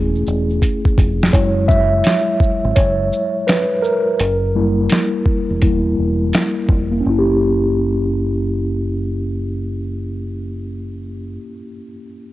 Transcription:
0.00 0.23 E1 medium
0.00 1.26 A3 medium
0.00 1.28 C#4 medium
0.00 1.30 E4 medium
0.00 1.32 G#4 medium
0.15 shaker soft
0.27 0.60 E1 medium
0.27 shaker soft
0.50 shaker soft
0.62 kick soft
0.62 closed hi-hat medium
0.62 shaker medium
0.85 kick medium
0.85 shaker soft
0.98 1.31 F1 medium
0.98 kick medium
0.98 closed hi-hat medium
0.98 shaker soft
1.21 snare medium
1.21 shaker soft
1.33 2.01 F#1 loud
1.33 4.15 F#3 soft
1.33 4.15 G#3 medium
1.33 4.16 E4 medium
1.33 1.66 C#5 medium
1.33 kick loud
1.33 closed hi-hat medium
1.68 2.79 E5 loud
1.68 kick medium
1.68 shaker soft
2.04 snare loud
2.04 closed hi-hat medium
2.40 kick medium
2.40 shaker soft
2.65 2.76 G#1 medium
2.76 3.10 F#1 medium
2.76 3.49 C#5 medium
2.76 kick medium
2.76 closed hi-hat medium
3.13 shaker soft
3.47 3.80 B4 medium
3.47 snare loud
3.47 closed hi-hat medium
3.82 5.93 A#4 medium
3.82 shaker soft
4.20 4.87 F#1 loud
4.20 closed hi-hat medium
4.55 5.58 G3 medium
4.55 5.58 A#3 medium
4.55 5.58 E4 medium
4.90 snare medium
4.90 closed hi-hat medium
5.26 kick medium
5.50 5.95 E1 medium
5.62 5.94 G3 soft
5.62 5.94 A#3 soft
5.62 5.94 E4 medium
5.62 kick medium
5.62 closed hi-hat medium
5.98 6.31 E1 medium
6.33 snare loud
6.33 closed hi-hat medium
6.69 7.02 F1 medium
6.69 kick medium
6.91 11.26 A#3 medium
7.00 11.34 C#4 medium
7.06 11.37 F#1 medium
7.10 11.39 E4 medium
7.18 11.43 G4 medium

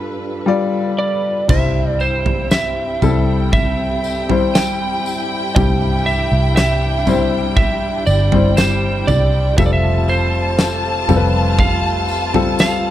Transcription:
0.00 1.45 G3 medium
0.00 1.45 D4 medium
0.00 1.45 F4 medium
0.00 1.45 A4 medium
0.00 1.45 B4 medium
0.46 1.44 G3 medium
0.46 1.44 F4 medium
0.46 1.45 D5 loud
0.99 1.50 D5 medium
1.48 2.98 C2 medium
1.48 2.98 G2 medium
1.48 2.94 G3 medium
1.48 12.90 G3 medium
1.48 2.94 C4 medium
1.48 5.52 C4 medium
1.48 9.54 E4 medium
1.48 2.95 E4 medium
1.48 2.95 C5 medium
1.48 1.92 E5 medium
1.48 9.54 G5 loud
1.48 kick loud
1.48 floor tom loud
1.48 crash medium
1.48 tambourine soft
1.92 2.02 D5 medium
2.00 2.48 C5 medium
2.00 tambourine soft
2.26 floor tom medium
2.51 3.52 E5 medium
2.51 snare loud
2.51 tambourine medium
3.02 5.52 C2 medium
3.02 4.23 G3 medium
3.02 4.24 C4 medium
3.02 4.24 E4 medium
3.02 4.24 A4 medium
3.02 floor tom medium
3.02 tambourine soft
3.53 4.58 E5 loud
3.53 kick medium
3.53 floor tom medium
3.53 tambourine soft
4.04 tambourine soft
4.29 5.50 G3 medium
4.29 5.50 C4 medium
4.29 5.50 E4 medium
4.29 5.51 C5 medium
4.29 floor tom medium
4.55 5.52 G5 loud
4.55 snare loud
4.55 tambourine medium
5.06 tambourine medium
5.56 6.28 C2 medium
5.56 7.03 G2 medium
5.56 6.99 G3 medium
5.56 6.99 C4 medium
5.56 9.55 D4 medium
5.56 6.99 E4 medium
5.56 7.00 G4 medium
5.56 6.03 G5 loud
5.56 kick loud
5.56 floor tom loud
5.56 tambourine soft
6.06 6.53 E5 medium
6.06 tambourine soft
6.32 8.03 C2 medium
6.56 7.55 E5 medium
6.56 snare loud
6.56 tambourine medium
7.07 8.26 G3 medium
7.07 8.26 C4 medium
7.07 8.27 E4 medium
7.07 8.27 C5 medium
7.07 floor tom medium
7.07 tambourine soft
7.57 8.06 E5 loud
7.57 kick medium
7.57 floor tom medium
7.57 tambourine soft
8.06 9.04 G1 medium
8.06 8.59 D5 medium
8.06 tambourine soft
8.32 9.52 G3 medium
8.32 9.52 C4 medium
8.32 9.52 E4 medium
8.32 9.53 C5 medium
8.32 floor tom medium
8.57 9.09 C5 medium
8.57 snare loud
8.57 tambourine medium
9.07 9.55 C2 medium
9.07 9.57 D5 medium
9.07 floor tom medium
9.07 tambourine soft
9.57 11.05 F1 loud
9.57 11.05 C3 medium
9.57 11.01 G3 medium
9.57 12.90 A3 medium
9.57 11.01 C4 medium
9.57 12.90 F4 medium
9.57 11.02 F4 medium
9.57 11.02 A4 medium
9.57 9.65 E5 medium
9.57 12.90 A5 loud
9.57 kick loud
9.57 floor tom loud
9.57 tambourine soft
9.66 9.72 D5 medium
9.73 10.10 E5 medium
10.08 11.05 C5 medium
10.08 tambourine soft
10.59 snare loud
10.59 tambourine medium
11.08 12.90 F1 medium
11.08 12.28 G3 medium
11.08 12.28 C4 medium
11.08 12.28 F4 medium
11.08 11.16 A4 medium
11.08 floor tom medium
11.08 tambourine soft
11.17 12.32 B4 medium
11.59 12.59 F5 medium
11.59 kick medium
11.59 floor tom medium
11.59 tambourine soft
12.08 tambourine soft
12.34 12.90 G3 medium
12.34 12.90 C4 medium
12.34 12.90 F4 medium
12.34 12.90 A4 medium
12.34 floor tom medium
12.59 12.90 F5 medium
12.59 snare loud
12.59 tambourine medium

